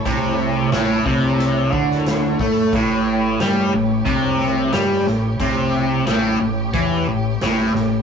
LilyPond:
<<
  \new Staff \with { instrumentName = "String section" } { \time 4/4 \key a \mixolydian \tempo 4 = 90 << { <a e' cis''>1~ | <a e' cis''>1~ | <a e' cis''>1 | } \\ { a'1 | g'1~ | g'1 | } >> }
  \new Staff \with { instrumentName = "Overdriven electric guitar" } { \clef bass \time 4/4 \key a \mixolydian c4 a,8 c4 d4 a8 | a,4 g8 a,8 c4 g8 a,8 | c4 a,8 a,8 e8 a,8 a,8 a,8 | }
  \new Staff \with { instrumentName = "Fingered electric bass" } { \clef bass \time 4/4 \key a \mixolydian c,4 a,,8 c,4 d,4 a,8 | a,,4 g,8 a,,8 c,4 g,8 a,,8 | c,4 a,,8 a,,8 e,8 a,,8 a,,8 a,,8 | }
  \new DrumStaff \with { instrumentName = "Drums" } \drummode { \time 4/4 <hh bd>4 <hh sn>8 bd8 hh8 bd16 sn16 <hh sn>8 <bd sn>8 | <hh bd>4 <hh sn>4 <hh bd>8 sn8 <hh sn>8 sn8 | <hh bd>4 <hh sn>4 <hh bd>4 <hh sn>8 sn8 | }
>>